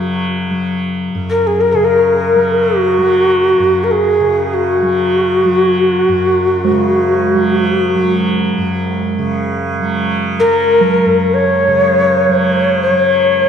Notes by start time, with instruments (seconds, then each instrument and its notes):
Already playing: tanpura F#2 C#3 F#3
0.50 tanpura F#3
1.15 tanpura F#2
1.30 native american-style wooden flute A#4
1.47 native american-style wooden flute G#4
1.60 native american-style wooden flute A#4
1.72 tanpura C#3, native american-style wooden flute G#4
1.85 native american-style wooden flute A#4
2.36 tanpura F#3
2.63 native american-style wooden flute F#4
2.98 tanpura F#3
3.59 tanpura F#2
3.84 native american-style wooden flute A#4
3.91 native american-style wooden flute G#4
4.20 tanpura C#3
4.54 native american-style wooden flute F#4
4.82 tanpura F#3
5.45 tanpura F#3
6.08 tanpura F#2
6.65 singing bowl G#3
6.71 tanpura C#3
7.34 tanpura F#3
7.95 tanpura F#3
8.58 tanpura F#2
9.19 tanpura C#3
9.80 tanpura F#3
10.40 tanpura F#3, native american-style wooden flute A#4
10.81 singing bowl F#3
11.05 tanpura F#2
11.34 native american-style wooden flute C#5
11.68 tanpura C#3
12.28 tanpura F#3
12.82 native american-style wooden flute C#5
12.90 tanpura F#3